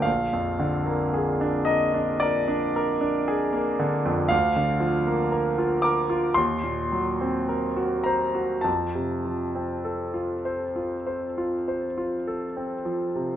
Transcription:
\new Staff \with { instrumentName = "Grand piano" } { \time 4/4 \key bes \major \tempo 4 = 54 << { f''4. ees''8 d''4. r8 | \key f \mixolydian f''4. d'''8 c'''4. bes''8 | a''2.~ a''8 r8 | } \\ { bes,,16 f,16 d16 bes16 aes'16 d'16 bes'16 d'16 bes'16 d'16 bes'16 d'16 aes'16 bes16 d16 f,16 | d,16 d16 f16 bes16 bes'16 f'16 bes'16 f'16 ees,16 bes,16 ges16 c'16 bes'16 ges'16 c''16 ges'16 | f,16 c16 f16 c'16 a'16 f'16 c''16 f'16 c''16 f'16 c''16 f'16 a'16 c'16 f16 c16 | } >> }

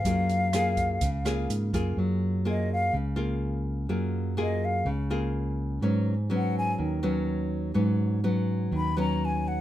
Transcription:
<<
  \new Staff \with { instrumentName = "Flute" } { \time 4/4 \key ges \major \tempo 4 = 125 f''2. r4 | r4 ees''8 f''8 r2 | r4 ees''8 f''8 r2 | r4 ges''8 aes''8 r2 |
r2 ces'''8 bes''8 aes''8 ges''8 | }
  \new Staff \with { instrumentName = "Nylon-string guitar" } { \time 4/4 \key ges \major << { <bes f' aes'>4 <bes f' aes'>4 r8 <bes f' aes'>4 <bes f' aes'>8~ | <bes f' aes'>4 <bes f' aes'>4 r8 <bes f' aes'>4. | <bes f' aes'>4 <bes f' aes'>4 r8 <bes f' aes'>4. | <ges ces' des'>8 r8 <ges ces' des'>4. <ges ces' des'>4. |
<ges ces' des'>4 <ges ces' des'>4. <ges ces' des'>4. | } \\ { ges2 des2 | ges2 des2 | ges2 des2 | aes,2 ees2 |
aes,2 ees2 | } >> }
  \new Staff \with { instrumentName = "Fingered electric bass" } { \clef bass \time 4/4 \key ges \major ges,2 des,4 aes,8 ges,8 | ges,2 des,2 | ges,2 des,2 | aes,2 ees,2 |
aes,2 ees,2 | }
  \new DrumStaff \with { instrumentName = "Drums" } \drummode { \time 4/4 <hh bd>8 hh8 <hh ss>8 <hh bd>8 <hh bd>8 <hh ss>8 hh8 <hh bd>8 | r4 r4 r4 r4 | r4 r4 r4 r4 | r4 r4 r4 r4 |
r4 r4 r4 r4 | }
>>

